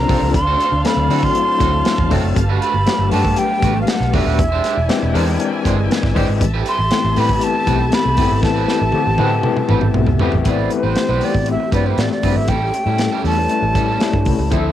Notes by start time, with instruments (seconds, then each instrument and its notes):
Already playing: tine electric piano F3 A#3 C4 C#4 D4 G4 A4, string section D4 A#4 C5 F5, flute A#5
0.08 fingered electric bass C2, tine electric piano F3 A#3 C4 D4 A4, clean electric guitar F3 C4 D4 A4, kick, open hi-hat
0.21 fingered electric bass C#2, muted clean electric guitar stroke
0.34 fingered electric bass D2, string section A5, flute C6, muted clean electric guitar stroke, kick, closed hi-hat
0.47 clean electric guitar A3 C4 F#4 A4
0.59 clean electric guitar A3 C4 F#4 A4, closed hi-hat
0.72 fingered electric bass D2, muted clean electric guitar stroke
0.84 tine electric piano F#3 A3 C4 D4 A4, flute B5, snare, closed hi-hat
0.97 fingered electric bass D2, muted clean electric guitar stroke
1.09 fingered electric bass D3, tine electric piano F#3 A3 C4 D4 E4, clean electric guitar A3 C4 F#4 A4, open hi-hat
1.17 tine electric piano F#4
1.23 flute C6, muted clean electric guitar stroke, kick
1.35 closed hi-hat
1.47 muted clean electric guitar stroke
1.60 fingered electric bass D2, clean electric guitar A3 C4 F#4 A4, kick, closed hi-hat
1.72 muted clean electric guitar stroke
1.85 muted clean electric guitar stroke, snare, closed hi-hat
1.98 fingered electric bass E2, muted clean electric guitar stroke, kick
2.11 fingered electric bass F1, tine electric piano F#3 A3 C4 D4 A4, clean electric guitar A3 C4 F#4 A4, kick, open hi-hat
2.24 fingered electric bass F#1, muted clean electric guitar stroke
2.36 fingered electric bass G1, string section G4 B4, muted clean electric guitar stroke, kick, closed hi-hat
2.49 clean electric guitar A3 D4 F#4 B4
2.61 clean electric guitar A3 D4 F#4 B4, flute B5, closed hi-hat
2.74 fingered electric bass G1, muted clean electric guitar stroke
2.86 tine electric piano F#3 A3 B3 D4 G4, snare, closed hi-hat
2.99 fingered electric bass G1, muted clean electric guitar stroke
3.11 fingered electric bass G2, tine electric piano G3 A3 B3 D4 G4, clean electric guitar A3 D4 F#4 B4, flute A5, open hi-hat
3.25 muted clean electric guitar stroke, kick
3.36 flute G5, closed hi-hat
3.51 muted clean electric guitar stroke
3.62 fingered electric bass A1, clean electric guitar A3 D4 F#4 B4, kick, closed hi-hat
3.75 muted clean electric guitar stroke
3.82 flute F5
3.87 flute F#5, muted clean electric guitar stroke, snare, closed hi-hat
4.00 fingered electric bass B1, muted clean electric guitar stroke, snare
4.13 fingered electric bass E1, tine electric piano F#3 A3 B3 D4 G4, clean electric guitar A3 D4 F#4 B4, flute E5, kick, open hi-hat
4.25 fingered electric bass D#1, clean electric guitar A3 D4 F#4 B4
4.37 fingered electric bass E1, string section E4 D5 E5 G#5, muted clean electric guitar stroke, kick, closed hi-hat
4.52 clean electric guitar G#3 D4 G4 C5
4.64 clean electric guitar G#3 D4 G4 C5, snare, closed hi-hat
4.77 fingered electric bass E1, muted clean electric guitar stroke
4.88 tine electric piano E3 G#3 C4 D4 G4, snare, closed hi-hat
5.02 fingered electric bass E1, muted clean electric guitar stroke
5.14 fingered electric bass E2, tine electric piano E3 G#3 C4 D4 A#4, clean electric guitar G#3 D4 G4 C5, open hi-hat
5.27 muted clean electric guitar stroke
5.40 closed hi-hat
5.53 muted clean electric guitar stroke
5.65 fingered electric bass G1, clean electric guitar G#3 D4 G4 C5, kick, closed hi-hat
5.78 muted clean electric guitar stroke
5.91 muted clean electric guitar stroke, snare, closed hi-hat
6.03 fingered electric bass G#1, muted clean electric guitar stroke, kick, snare
6.15 fingered electric bass G1, tine electric piano E3 G#3 C4 D4 G4, clean electric guitar G#3 D4 G4 C5, kick, open hi-hat
6.28 fingered electric bass G#1, muted clean electric guitar stroke
6.39 fingered electric bass A1, string section G4 A4 A5, muted clean electric guitar stroke, kick, closed hi-hat
6.54 clean electric guitar G3 C4 E4 B4
6.66 clean electric guitar G3 C4 E4 B4, flute C6, closed hi-hat
6.79 fingered electric bass A1, muted clean electric guitar stroke
6.91 tine electric piano E3 A3 B3 C4 G4, snare, closed hi-hat
7.04 fingered electric bass A1, muted clean electric guitar stroke
7.16 fingered electric bass A2, tine electric piano E3 A3 B3 C4 G4, clean electric guitar G3 C4 E4 B4, flute B5, open hi-hat
7.29 muted clean electric guitar stroke, kick
7.41 flute A5, closed hi-hat
7.55 muted clean electric guitar stroke
7.67 fingered electric bass B1, clean electric guitar G3 C4 E4 B4, kick, closed hi-hat
7.80 muted clean electric guitar stroke
7.92 flute B5, muted clean electric guitar stroke, snare, closed hi-hat
8.05 fingered electric bass C2, muted clean electric guitar stroke
8.17 fingered electric bass G1, tine electric piano E3 A3 B3 C4 E4, clean electric guitar G3 C4 E4 B4, kick, open hi-hat
8.30 fingered electric bass G#1, muted clean electric guitar stroke
8.43 fingered electric bass A1, flute A5, muted clean electric guitar stroke, kick, snare
8.55 clean electric guitar G3 C4 E4 B4
8.68 clean electric guitar G3 C4 E4 B4, snare
8.80 fingered electric bass A1, muted clean electric guitar stroke
8.92 tine electric piano E3 A3 B3 C4 G4, high tom
9.06 fingered electric bass A1, muted clean electric guitar stroke
9.18 fingered electric bass A2, tine electric piano E3 A3 B3 C4 F#4, clean electric guitar G3 C4 E4 B4, high tom
9.26 tine electric piano G4
9.32 muted clean electric guitar stroke
9.43 mid tom
9.57 muted clean electric guitar stroke, mid tom
9.69 fingered electric bass A1, clean electric guitar G3 C4 E4 B4, mid tom
9.81 muted clean electric guitar stroke, mid tom
9.94 fingered electric bass B1, muted clean electric guitar stroke, mid tom
10.07 fingered electric bass C2, muted clean electric guitar stroke, floor tom
10.19 tine electric piano E3 A3 B3 C4 G4, clean electric guitar G3 C4 E4 B4, floor tom
10.32 fingered electric bass A1, muted clean electric guitar stroke, floor tom
10.44 fingered electric bass A1, string section C3 A3 G4, tine electric piano E3 A3 B3 C4 F4, clean electric guitar G3 C4 E4 B4, kick, closed hi-hat
10.49 tine electric piano G4, flute D5
10.70 muted clean electric guitar stroke, closed hi-hat
10.74 flute C5
10.83 fingered electric bass A1, clean electric guitar G3 C4 E4 B4
10.96 muted clean electric guitar stroke, snare, closed hi-hat
11.09 fingered electric bass B1, tine electric piano E3 A3 B3 C4 F#4, clean electric guitar G3 C4 E4 B4
11.16 tine electric piano G4
11.21 clean electric guitar G3 C4 E4 B4, flute D5, open hi-hat
11.34 fingered electric bass A1, muted clean electric guitar stroke, kick
11.46 muted clean electric guitar stroke, closed hi-hat
11.51 flute E5
11.60 muted clean electric guitar stroke
11.72 fingered electric bass G2, tine electric piano E3 A3 B3 C4 A4, clean electric guitar G3 C4 E4 B4, flute D5, kick, closed hi-hat
11.85 clean electric guitar G3 C4 E4 B4, flute C5
11.98 fingered electric bass A2, flute D5, snare, closed hi-hat
12.11 flute D5, muted clean electric guitar stroke, snare
12.23 fingered electric bass G2, tine electric piano E3 A3 B3 C4 D4, clean electric guitar G3 C4 E4 B4, kick, open hi-hat
12.36 fingered electric bass G#1, flute E5, muted clean electric guitar stroke
12.48 fingered electric bass A1, clean electric guitar G3 C#4 E4 A4, string section C#4, flute G5, kick, closed hi-hat
12.74 muted clean electric guitar stroke, closed hi-hat
12.86 fingered electric bass A2, tine electric piano G3 A3 C#4 E4 A4, clean electric guitar G3 C#4 E4 A4
12.98 muted clean electric guitar stroke, snare, closed hi-hat
13.12 clean electric guitar G3 C#4 E4 A4
13.24 fingered electric bass E2, clean electric guitar G3 C#4 E4 A4, flute A5, open hi-hat
13.37 tine electric piano G3 A3 C#4 E4 B4, muted clean electric guitar stroke
13.49 muted clean electric guitar stroke, closed hi-hat
13.62 fingered electric bass A1, muted clean electric guitar stroke
13.75 fingered electric bass A2, clean electric guitar G3 C#4 E4 A4, kick, closed hi-hat
13.87 clean electric guitar G3 C#4 E4 A4
14.00 tine electric piano G3 A3 C#4 E4 G4, muted clean electric guitar stroke, snare, closed hi-hat
14.13 fingered electric bass G2, muted clean electric guitar stroke, kick
14.25 fingered electric bass C2, kick, open hi-hat
14.39 fingered electric bass C#2, muted clean electric guitar stroke
14.50 fingered electric bass D2, string section D3 F3 C4 E4, tine electric piano F3 C4 D4 E4 G#4, clean electric guitar F3 C4 E4 A4, kick, closed hi-hat
14.57 tine electric piano A4